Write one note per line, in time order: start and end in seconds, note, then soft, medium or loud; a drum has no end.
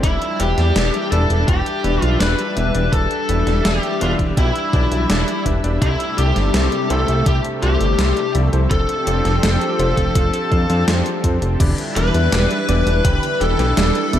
0.00 0.18 E1 loud
0.00 0.23 E3 medium
0.00 8.67 G3 medium
0.00 11.56 D4 medium
0.00 0.23 D4 medium
0.00 0.23 E4 medium
0.00 0.41 E4 medium
0.00 0.23 G4 medium
0.00 0.23 B4 medium
0.00 0.23 D5 medium
0.00 8.67 E5 medium
0.00 kick loud
0.00 closed hi-hat medium
0.22 closed hi-hat soft
0.40 0.54 E1 medium
0.40 0.71 E3 medium
0.40 0.71 D4 medium
0.40 0.71 E4 medium
0.40 1.11 G4 medium
0.40 0.71 G4 medium
0.40 0.71 B4 medium
0.40 0.71 E5 medium
0.40 closed hi-hat medium
0.58 0.72 E2 medium
0.58 snare soft
0.58 closed hi-hat soft
0.76 0.90 E1 loud
0.76 1.08 E3 medium
0.76 1.08 D4 medium
0.76 1.08 E4 medium
0.76 1.08 G4 medium
0.76 1.08 B4 medium
0.76 1.08 D5 medium
0.76 snare loud
0.76 closed hi-hat medium
0.94 closed hi-hat soft
1.12 1.27 E1 medium
1.12 1.44 E3 medium
1.12 1.44 D4 medium
1.12 1.44 E4 medium
1.12 1.44 G4 medium
1.12 1.48 A4 medium
1.12 1.44 B4 medium
1.12 1.44 D5 loud
1.12 closed hi-hat medium
1.30 1.45 E1 medium
1.30 closed hi-hat soft
1.48 1.63 E1 loud
1.48 1.68 E3 medium
1.48 1.68 D4 medium
1.48 1.68 E4 medium
1.48 2.03 G4 loud
1.48 1.68 G4 medium
1.48 1.68 B4 medium
1.48 1.68 G5 medium
1.48 kick loud
1.48 closed hi-hat medium
1.66 closed hi-hat soft
1.84 1.99 E1 medium
1.84 2.16 E3 medium
1.84 2.16 D4 medium
1.84 2.16 E4 medium
1.84 2.16 G4 medium
1.84 2.16 B4 medium
1.84 2.16 D5 loud
1.84 closed hi-hat soft
2.02 2.17 B1 medium
2.02 2.20 F4 loud
2.02 closed hi-hat soft
2.20 2.35 E1 loud
2.20 2.40 E3 medium
2.20 2.40 D4 medium
2.20 2.40 E4 medium
2.20 2.40 G4 medium
2.20 2.92 B4 loud
2.20 2.40 B4 medium
2.20 2.40 D5 loud
2.20 snare loud
2.20 closed hi-hat medium
2.39 closed hi-hat soft
2.57 2.71 E1 medium
2.57 2.70 E3 medium
2.57 2.70 D4 medium
2.57 2.70 E4 medium
2.57 2.70 G4 medium
2.57 2.70 B4 medium
2.57 2.70 E5 medium
2.57 closed hi-hat medium
2.75 2.89 E1 medium
2.75 2.88 E3 medium
2.75 2.88 D4 medium
2.75 2.88 E4 medium
2.75 2.88 G4 medium
2.75 2.88 B4 medium
2.75 2.88 D5 medium
2.75 closed hi-hat soft
2.93 3.07 E1 loud
2.93 3.13 E3 medium
2.93 3.13 D4 medium
2.93 3.13 E4 medium
2.93 3.13 G4 medium
2.93 3.61 A4 loud
2.93 3.13 B4 medium
2.93 3.13 D5 medium
2.93 kick loud
2.93 closed hi-hat medium
3.11 closed hi-hat soft
3.29 3.43 E1 medium
3.29 3.61 E3 medium
3.29 3.61 D4 medium
3.29 3.61 E4 medium
3.29 3.61 G4 medium
3.29 3.61 B4 medium
3.29 3.61 E5 medium
3.29 closed hi-hat medium
3.47 3.62 E1 medium
3.47 snare soft
3.47 closed hi-hat soft
3.65 3.80 E1 loud
3.65 3.97 E3 medium
3.65 3.97 D4 medium
3.65 3.97 E4 medium
3.65 3.97 G4 medium
3.65 4.01 G4 medium
3.65 3.97 B4 medium
3.65 3.97 D5 medium
3.65 snare loud
3.65 closed hi-hat medium
3.83 closed hi-hat soft
4.01 4.16 E1 medium
4.01 4.33 D3 medium
4.01 4.33 D4 medium
4.01 4.11 F4 medium
4.01 4.33 G4 medium
4.01 4.33 B4 medium
4.01 4.33 D5 loud
4.01 4.33 E5 medium
4.01 closed hi-hat medium
4.19 4.34 E1 medium
4.19 kick medium
4.19 closed hi-hat soft
4.37 4.52 B1 loud
4.37 4.57 E3 medium
4.37 4.57 D4 medium
4.37 4.57 E4 medium
4.37 5.42 E4 medium
4.37 4.57 G4 medium
4.37 4.57 B4 medium
4.37 4.57 G5 medium
4.37 kick loud
4.37 closed hi-hat medium
4.56 closed hi-hat soft
4.73 4.88 B1 medium
4.73 5.05 E3 medium
4.73 5.05 D4 medium
4.73 5.05 E4 medium
4.73 5.05 G4 medium
4.73 5.05 B4 medium
4.73 5.05 D5 loud
4.73 kick loud
4.73 closed hi-hat soft
4.92 5.06 B1 medium
4.92 closed hi-hat soft
5.10 5.24 E1 loud
5.10 5.30 E3 medium
5.10 5.29 D4 medium
5.10 5.29 E4 medium
5.10 5.30 G4 medium
5.10 5.29 B4 medium
5.10 5.29 D5 medium
5.10 snare loud
5.10 closed hi-hat medium
5.28 closed hi-hat soft
5.46 5.60 E1 medium
5.46 5.59 D4 medium
5.46 5.59 E4 medium
5.46 5.59 G4 medium
5.46 5.59 B4 medium
5.46 5.59 E5 medium
5.46 kick medium
5.46 closed hi-hat medium
5.64 5.78 E1 medium
5.64 5.78 D4 medium
5.64 5.78 E4 medium
5.64 5.78 G4 medium
5.64 5.78 B4 medium
5.64 5.78 D5 medium
5.64 closed hi-hat soft
5.82 5.96 C2 loud
5.82 8.68 C3 medium
5.82 6.02 C3 medium
5.82 8.68 A3 medium
5.82 6.02 C4 medium
5.82 6.02 E4 medium
5.82 6.18 E4 medium
5.82 6.02 G4 medium
5.82 6.02 A4 medium
5.82 6.02 C5 medium
5.82 kick loud
5.82 closed hi-hat medium
6.00 closed hi-hat soft
6.18 6.33 C2 medium
6.18 6.50 C3 medium
6.18 6.50 C4 medium
6.18 6.50 E4 medium
6.18 6.50 G4 medium
6.18 6.90 G4 loud
6.18 6.50 A4 medium
6.18 6.50 D5 medium
6.18 closed hi-hat medium
6.36 6.51 G1 medium
6.36 snare soft
6.36 closed hi-hat soft
6.54 6.69 C2 medium
6.54 6.86 C3 medium
6.54 6.86 C4 medium
6.54 6.86 E4 medium
6.54 6.86 G4 medium
6.54 6.86 A4 medium
6.54 6.86 C5 medium
6.54 snare loud
6.54 closed hi-hat medium
6.72 closed hi-hat soft
6.90 7.05 C2 loud
6.90 7.22 C3 loud
6.90 7.22 C4 medium
6.90 7.22 E4 medium
6.90 7.22 G4 medium
6.90 7.26 A4 loud
6.90 7.22 A4 medium
6.90 7.22 C5 loud
6.90 closed hi-hat medium
7.08 7.23 C2 medium
7.08 closed hi-hat soft
7.26 7.41 C2 loud
7.26 7.46 C3 medium
7.26 7.46 C4 medium
7.26 7.46 E4 medium
7.26 7.46 G4 medium
7.26 7.36 G4 loud
7.26 7.46 A4 medium
7.26 7.46 E5 medium
7.26 kick loud
7.26 closed hi-hat medium
7.45 closed hi-hat soft
7.63 7.77 C2 medium
7.63 7.94 C3 medium
7.63 7.94 C4 medium
7.63 7.94 E4 medium
7.63 7.94 G4 medium
7.63 8.31 G4 medium
7.63 7.94 A4 medium
7.63 7.94 C5 loud
7.63 closed hi-hat soft
7.81 7.95 G1 medium
7.81 closed hi-hat soft
7.99 8.13 C2 loud
7.99 8.19 C3 medium
7.99 8.18 C4 medium
7.99 8.19 E4 medium
7.99 8.18 G4 medium
7.99 8.19 A4 medium
7.99 8.19 C5 loud
7.99 snare loud
7.99 closed hi-hat medium
8.17 closed hi-hat soft
8.35 8.49 C2 medium
8.35 8.49 F3 medium
8.35 8.49 C4 medium
8.35 8.49 E4 medium
8.35 8.49 G4 medium
8.35 8.49 A4 medium
8.35 8.49 D5 medium
8.35 closed hi-hat medium
8.53 8.68 C2 medium
8.53 8.67 F3 medium
8.53 8.67 C4 medium
8.53 8.67 E4 medium
8.53 8.67 G4 medium
8.53 8.67 A4 medium
8.53 8.67 C5 medium
8.53 closed hi-hat soft
8.71 8.85 F1 loud
8.71 8.91 F3 medium
8.71 11.57 F3 medium
8.71 8.91 C4 medium
8.71 11.57 C4 medium
8.71 8.91 D4 medium
8.71 8.91 F4 medium
8.71 11.57 G4 medium
8.71 10.84 A4 loud
8.71 8.91 A4 medium
8.71 11.57 A4 medium
8.71 8.91 C5 medium
8.71 kick loud
8.71 closed hi-hat medium
8.89 closed hi-hat soft
9.07 9.22 F1 medium
9.07 9.39 F3 medium
9.07 9.39 C4 medium
9.07 9.39 D4 medium
9.07 9.39 F4 medium
9.07 9.39 A4 medium
9.07 9.39 D5 medium
9.07 closed hi-hat medium
9.25 9.40 F1 medium
9.25 snare soft
9.25 closed hi-hat soft
9.43 9.58 F1 loud
9.43 9.75 F3 medium
9.43 9.75 C4 medium
9.43 9.75 D4 medium
9.43 9.75 F4 medium
9.43 9.75 A4 medium
9.43 9.75 C5 medium
9.43 snare loud
9.43 closed hi-hat medium
9.61 closed hi-hat soft
9.79 9.94 F1 medium
9.79 10.11 F3 loud
9.79 10.11 C4 medium
9.79 10.11 D4 medium
9.79 10.11 F4 medium
9.79 10.11 A4 medium
9.79 10.11 C5 loud
9.79 closed hi-hat medium
9.97 10.12 F1 medium
9.97 kick medium
9.97 closed hi-hat soft
10.15 10.30 F1 loud
10.15 10.35 F3 medium
10.15 10.35 C4 medium
10.15 10.35 D4 medium
10.15 10.35 F4 medium
10.15 10.35 A4 medium
10.15 10.35 F5 medium
10.15 kick loud
10.15 closed hi-hat medium
10.34 closed hi-hat soft
10.52 10.66 F2 loud
10.52 10.67 F3 medium
10.52 10.67 C4 medium
10.52 10.67 D4 medium
10.52 10.67 F4 medium
10.52 10.67 A4 medium
10.52 10.67 F5 medium
10.52 kick loud
10.52 closed hi-hat soft
10.70 10.84 F2 medium
10.70 10.83 F3 loud
10.70 10.83 C4 medium
10.70 10.83 D4 medium
10.70 10.83 F4 medium
10.70 10.83 A4 medium
10.70 10.83 F5 loud
10.70 closed hi-hat soft
10.88 11.02 F2 loud
10.88 11.08 F3 medium
10.88 11.08 C4 medium
10.88 11.08 D4 medium
10.88 11.08 F4 medium
10.88 11.08 A4 medium
10.88 11.08 C5 loud
10.88 snare loud
10.88 closed hi-hat medium
11.06 closed hi-hat soft
11.24 11.39 F2 medium
11.24 11.55 C4 medium
11.24 11.55 D4 medium
11.24 11.55 F4 medium
11.24 11.55 A4 medium
11.24 11.55 C5 medium
11.24 kick medium
11.24 closed hi-hat medium
11.42 11.57 F1 medium
11.42 closed hi-hat soft
11.60 11.75 E1 loud
11.60 11.75 D3 loud
11.60 11.80 E3 medium
11.60 14.19 G3 medium
11.60 11.80 D4 medium
11.60 14.19 D4 medium
11.60 11.80 E4 medium
11.60 14.19 E4 medium
11.60 11.80 G4 medium
11.60 11.80 B4 medium
11.60 11.80 D5 medium
11.60 kick loud
11.60 closed hi-hat loud
11.60 crash loud
11.78 closed hi-hat soft
11.96 12.11 E1 medium
11.96 12.28 E3 medium
11.96 12.12 E3 medium
11.96 12.28 D4 medium
11.96 12.28 E4 medium
11.96 12.28 G4 medium
11.96 13.03 B4 loud
11.96 12.28 B4 medium
11.96 13.04 B4 loud
11.96 12.28 E5 medium
11.96 closed hi-hat medium
12.14 12.29 E2 medium
12.14 closed hi-hat soft
12.32 12.47 E1 loud
12.32 12.64 E3 medium
12.32 12.58 G3 medium
12.32 12.64 D4 medium
12.32 12.64 E4 medium
12.32 12.64 G4 medium
12.32 12.64 B4 medium
12.32 12.64 D5 medium
12.32 snare loud
12.32 closed hi-hat medium
12.51 closed hi-hat soft
12.69 12.83 E1 loud
12.69 13.00 E3 loud
12.69 12.84 B3 loud
12.69 13.00 D4 medium
12.69 13.00 E4 medium
12.69 13.00 G4 medium
12.69 13.00 B4 medium
12.69 13.00 D5 loud
12.69 closed hi-hat medium
12.87 13.01 E1 medium
12.87 closed hi-hat soft
13.05 13.19 E1 loud
13.05 13.30 D3 medium
13.05 13.25 E3 medium
13.05 13.25 D4 medium
13.05 13.25 E4 medium
13.05 13.25 G4 medium
13.05 13.42 B4 loud
13.05 13.25 B4 medium
13.05 13.41 B4 loud
13.05 13.25 G5 medium
13.05 kick loud
13.05 closed hi-hat medium
13.23 closed hi-hat soft
13.41 13.55 E1 medium
13.41 13.56 E3 medium
13.41 13.66 E3 medium
13.41 13.56 D4 medium
13.41 13.56 E4 medium
13.41 13.56 G4 medium
13.41 14.19 A4 loud
13.41 13.56 B4 medium
13.41 13.56 G5 medium
13.41 closed hi-hat soft
13.59 13.73 B1 medium
13.59 13.73 E3 loud
13.59 13.73 D4 medium
13.59 13.73 E4 medium
13.59 13.73 G4 medium
13.59 13.73 B4 medium
13.59 13.73 G5 loud
13.59 snare soft
13.59 closed hi-hat soft
13.77 13.92 E1 loud
13.77 13.97 E3 medium
13.77 14.03 G3 loud
13.77 13.97 D4 medium
13.77 13.97 E4 medium
13.77 13.97 G4 medium
13.77 13.97 B4 medium
13.77 13.97 D5 loud
13.77 snare loud
13.77 closed hi-hat medium
13.95 closed hi-hat soft
14.13 14.19 E1 medium
14.13 14.19 E3 medium
14.13 14.19 B3 medium
14.13 14.19 D4 medium
14.13 14.19 E4 medium
14.13 14.19 G4 medium
14.13 14.19 B4 medium
14.13 14.19 D5 medium
14.13 closed hi-hat medium